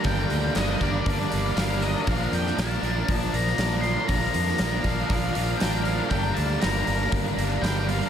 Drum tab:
HH |o-o-o-o-o-o-o-o-|o-o-o-o-o-o-o-o-|o-o-o-o-o-o-o-o-|o-o-o-o-o-o-o-o-|
SD |----o-------o---|---oo------oo---|---oo-------o---|----o-------o---|
BD |o-----o-o-------|o-------o-------|o-----o-o-------|o-------o-------|